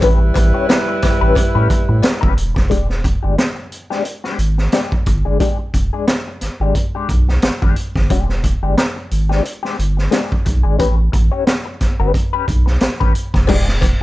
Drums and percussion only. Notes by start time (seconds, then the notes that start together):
0.01 kick, closed hi-hat, cowbell
0.34 kick, closed hi-hat, cowbell
0.69 snare, closed hi-hat, cowbell
1.02 kick, snare, closed hi-hat, cowbell
1.35 kick, closed hi-hat, cowbell
1.70 kick, closed hi-hat
2.03 snare, closed hi-hat, cowbell
2.23 kick
2.38 closed hi-hat
2.56 kick, snare
2.71 kick, closed hi-hat
2.90 snare
3.04 kick, closed hi-hat
3.38 snare, closed hi-hat
3.72 closed hi-hat
3.91 snare
4.05 closed hi-hat
4.24 snare
4.39 closed hi-hat
4.58 snare
4.72 snare, closed hi-hat
4.92 kick
5.06 kick, closed hi-hat
5.40 kick, closed hi-hat
5.74 kick, closed hi-hat
6.08 snare, closed hi-hat
6.41 snare, closed hi-hat
6.75 kick, closed hi-hat
7.09 kick, closed hi-hat
7.28 snare
7.42 snare, closed hi-hat
7.62 kick
7.76 closed hi-hat
7.96 kick, snare
8.10 kick, closed hi-hat
8.29 snare
8.44 kick, closed hi-hat
8.78 snare, closed hi-hat
9.11 closed hi-hat
9.31 snare
9.45 closed hi-hat
9.65 snare
9.79 closed hi-hat
9.98 snare
10.12 snare, closed hi-hat
10.32 kick
10.46 kick, closed hi-hat
10.79 kick, closed hi-hat
11.13 kick, closed hi-hat
11.47 snare, closed hi-hat
11.80 kick, snare, closed hi-hat
12.14 kick, closed hi-hat
12.48 kick, closed hi-hat
12.67 snare
12.80 snare, closed hi-hat
13.01 kick
13.15 closed hi-hat
13.34 kick, snare
13.47 kick, crash, cowbell
13.68 snare
13.81 kick, closed hi-hat, cowbell